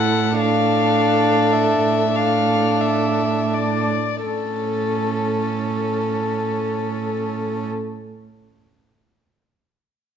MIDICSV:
0, 0, Header, 1, 5, 480
1, 0, Start_track
1, 0, Key_signature, 3, "major"
1, 0, Tempo, 1111111
1, 169, Time_signature, 6, 3, 24, 8
1, 660, Tempo, 1284797
1, 1140, Tempo, 1438849
1, 1620, Tempo, 1382488
1, 2100, Tempo, 1360544
1, 3697, End_track
2, 0, Start_track
2, 0, Title_t, "Violin"
2, 0, Program_c, 0, 40
2, 0, Note_on_c, 0, 78, 56
2, 165, Note_off_c, 0, 78, 0
2, 168, Note_on_c, 0, 77, 63
2, 661, Note_on_c, 0, 76, 58
2, 667, Note_off_c, 0, 77, 0
2, 895, Note_on_c, 0, 77, 59
2, 901, Note_off_c, 0, 76, 0
2, 1137, Note_on_c, 0, 76, 49
2, 1142, Note_off_c, 0, 77, 0
2, 1383, Note_on_c, 0, 74, 39
2, 1388, Note_off_c, 0, 76, 0
2, 1620, Note_off_c, 0, 74, 0
2, 1622, Note_on_c, 0, 69, 35
2, 2822, Note_off_c, 0, 69, 0
2, 3697, End_track
3, 0, Start_track
3, 0, Title_t, "Violin"
3, 0, Program_c, 1, 40
3, 0, Note_on_c, 1, 69, 55
3, 157, Note_off_c, 1, 69, 0
3, 171, Note_on_c, 1, 69, 55
3, 880, Note_off_c, 1, 69, 0
3, 894, Note_on_c, 1, 69, 45
3, 1498, Note_off_c, 1, 69, 0
3, 1619, Note_on_c, 1, 69, 34
3, 2819, Note_off_c, 1, 69, 0
3, 3697, End_track
4, 0, Start_track
4, 0, Title_t, "Viola"
4, 0, Program_c, 2, 41
4, 0, Note_on_c, 2, 64, 45
4, 155, Note_off_c, 2, 64, 0
4, 171, Note_on_c, 2, 62, 47
4, 880, Note_off_c, 2, 62, 0
4, 894, Note_on_c, 2, 62, 40
4, 1498, Note_off_c, 2, 62, 0
4, 1620, Note_on_c, 2, 61, 31
4, 2820, Note_off_c, 2, 61, 0
4, 3697, End_track
5, 0, Start_track
5, 0, Title_t, "Cello"
5, 0, Program_c, 3, 42
5, 0, Note_on_c, 3, 45, 48
5, 1497, Note_off_c, 3, 45, 0
5, 1619, Note_on_c, 3, 45, 33
5, 2819, Note_off_c, 3, 45, 0
5, 3697, End_track
0, 0, End_of_file